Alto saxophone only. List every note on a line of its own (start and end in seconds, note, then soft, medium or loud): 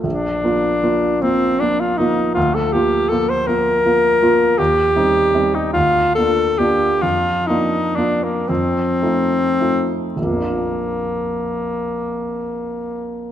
0.04 1.23 D4 medium
1.22 1.61 C4 medium
1.59 1.82 D4 medium
1.80 1.99 F4 medium
1.97 2.34 D#4 medium
2.34 2.56 F4 medium
2.54 2.74 A4 medium
2.73 3.10 G4 medium
3.09 3.31 A4 medium
3.29 3.49 C5 medium
3.47 4.60 A#4 medium
4.58 5.56 G4 medium
5.54 5.73 D#4 medium
5.73 6.14 F4 medium
6.15 6.60 A4 medium
6.58 7.03 G4 medium
7.02 7.48 F4 medium
7.47 7.97 D#4 medium
7.96 8.25 D4 medium
8.24 8.50 A#3 medium
8.48 9.97 C4 medium
10.14 13.32 A#3 medium